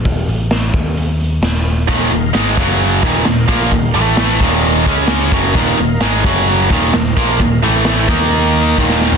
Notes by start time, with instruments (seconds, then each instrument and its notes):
0.05 picked electric bass D#1, kick, open hi-hat
0.27 picked electric bass A1, open hi-hat
0.51 snare, open hi-hat
0.74 picked electric bass D#2, kick, open hi-hat
0.97 open hi-hat
1.20 open hi-hat
1.42 picked electric bass D#1, snare, open hi-hat
1.66 open hi-hat
1.88 picked electric bass D#1, distorted electric guitar D#2 A#2 D#3, tonewheel organ D#4 A#4 F5, kick, open hi-hat
2.11 picked electric bass D#1, distorted electric guitar D#2 A#2, open hi-hat
2.34 picked electric bass G#1, distorted electric guitar G#2 D#3 G#3, snare, open hi-hat
2.57 picked electric bass F#1, distorted electric guitar F#2 C#3 F#3, tonewheel organ F#3 C#4 G#4, kick, open hi-hat
2.80 open hi-hat
3.01 picked electric bass D#1, distorted electric guitar D#2 A#2 D#3, tonewheel organ D#4 A#4 F5, kick, open hi-hat
3.25 picked electric bass D#1, distorted electric guitar D#2 A#2, snare, open hi-hat
3.48 picked electric bass A#1, distorted electric guitar A#2 F3 A#3, kick, open hi-hat
3.71 picked electric bass D#1, distorted electric guitar D#2 A#2, kick, open hi-hat
3.93 picked electric bass A1, distorted electric guitar A2 E3 A3, tonewheel organ A3 E4 B4, open hi-hat
4.17 snare, open hi-hat
4.39 picked electric bass D#1, distorted electric guitar D#2 A#2 D#3, tonewheel organ D#4 A#4 F5, kick, open hi-hat
4.63 open hi-hat
4.85 picked electric bass C#2, distorted electric guitar C#3 G#3 C#4, tonewheel organ C#4 G#4 D#5, kick, open hi-hat
5.08 snare, open hi-hat
5.31 distorted electric guitar F#2 C#3 F#3, tonewheel organ D#4 A#4 F5, kick, open hi-hat
5.54 picked electric bass D#1, distorted electric guitar D#2 A#2 D#3, kick, open hi-hat
5.77 picked electric bass D#1, distorted electric guitar D#2 A#2, open hi-hat
6.01 picked electric bass G#1, distorted electric guitar G#2 D#3 G#3, snare, open hi-hat
6.22 picked electric bass F#1, distorted electric guitar F#2 C#3, tonewheel organ F#3 C#4 G#4, kick, open hi-hat
6.26 distorted electric guitar F#3
6.47 open hi-hat
6.68 picked electric bass D#1, distorted electric guitar D#2 A#2 D#3, tonewheel organ D#4 A#4 F5, kick, open hi-hat
6.93 picked electric bass D#1, distorted electric guitar D#2 A#2, snare, open hi-hat
7.17 picked electric bass A#1, distorted electric guitar A#2 F3 A#3, kick
7.40 picked electric bass D#1, distorted electric guitar D#2 A#2, kick, open hi-hat
7.62 picked electric bass A1, distorted electric guitar A2 E3 A3, tonewheel organ A3 E4 B4, open hi-hat
7.85 snare, open hi-hat
8.08 picked electric bass D#2, distorted electric guitar D#3 A#3 D#4, tonewheel organ D#4 A#4 F5, kick, open hi-hat
8.31 open hi-hat
8.55 open hi-hat
8.77 picked electric bass D#1, distorted electric guitar D#2 A#2 D#3, kick
8.90 snare
9.01 snare
9.12 floor tom